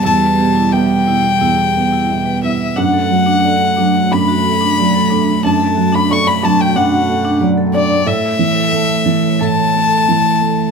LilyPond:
<<
  \new Staff \with { instrumentName = "Violin" } { \time 4/4 \key d \major \tempo 4 = 89 a''4 g''2~ g''8 e''8 | fis''2 b''2 | a''8. b''16 cis'''16 b''16 a''16 g''16 fis''4 r8 d''8 | e''2 a''2 | }
  \new Staff \with { instrumentName = "Vibraphone" } { \time 4/4 \key d \major e'16 b'16 g'16 e'16 e''16 r16 e'16 g'16 e'16 g'16 r16 e'16 e''16 b'16 e'16 r16 | d'16 a'16 fis'16 d'16 d''16 r16 d'16 fis'16 d'16 fis'16 r16 d'16 d''16 a'16 d'16 r16 | d'16 a'16 fis'16 d'16 d''16 r16 d'16 fis'16 d'16 fis'16 r16 d'16 d''16 a'16 d'16 r16 | a'16 e''16 cis''16 a'16 a''16 r16 a'16 cis''16 a'16 cis''16 r16 a'16 r16 e''16 a'16 r16 | }
  \new Staff \with { instrumentName = "Cello" } { \time 4/4 \key d \major g2.~ g8 r8 | a1~ | a1 | a1 | }
  \new Staff \with { instrumentName = "Felt piano" } { \time 4/4 \key d \major a''4 g''2~ g''8 e''8 | fis''2 b''2 | a''8. b''16 cis'''16 b''16 a''16 g''16 fis''4 r8 d''8 | e''2 a''2 | }
  \new Staff \with { instrumentName = "Felt piano" } { \clef bass \time 4/4 \key d \major <e, b>8 b,8 b8 b,8 e,8 b8 b,8 b8 | fis,8 fis8 a8 fis8 fis,8 a8 fis8 a8 | fis,8 fis8 a8 fis8 fis,8 a8 fis8 a8 | a,8 e8 a8 e8 a,8 a8 e8 a8 | }
>>